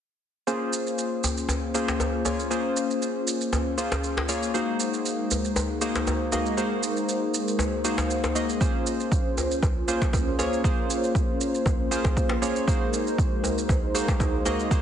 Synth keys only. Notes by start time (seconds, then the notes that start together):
0.47 A#3 C#4 F4 G#4 C5
1.74 A#3 C#4 F4 G#4 C5
2.25 A#3 C#4 F4 G#4 C#5
2.50 A#3 C#4 F4 G#4 C5
3.78 A#3 C#4 F4 G#4 C5
4.29 A#3 C#4 F4 G#4 C#5
4.54 A#3 D#4 F#4 G#4 C5
5.81 A#3 D#4 F#4 G#4 C5
6.32 A#3 D#4 F#4 G#4 D#5
6.57 A#3 D#4 F#4 G#4 C5
7.84 A#3 D#4 F#4 G#4 C5
8.35 A#3 D#4 F#4 G#4 D#5
8.61 A#3 C#4 F4 G#4 C5
9.88 A#3 C#4 F4 G#4 C5
10.39 A#3 C#4 F4 G#4 C#5
10.64 A#3 C#4 F4 G#4 C5
11.91 A#3 C#4 F4 G#4 C5
12.42 A#3 C#4 F4 G#4 C#5
12.67 A#3 D#4 F#4 G#4 C5
13.95 A#3 D#4 F#4 G#4 C5
14.45 A#3 D#4 F#4 G#4 D#5
14.71 A#3 D#4 F#4 G#4 C5